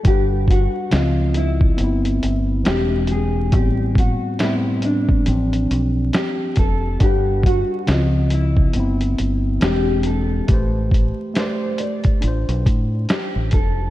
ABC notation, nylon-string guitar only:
X:1
M:4/4
L:1/8
Q:"Swing 16ths" 1/4=69
K:G
V:1 name="Nylon-string guitar"
G F ^E =E3 G ^G | G F E D3 G A | G F ^E =E3 G A- | A z c d3 G A |]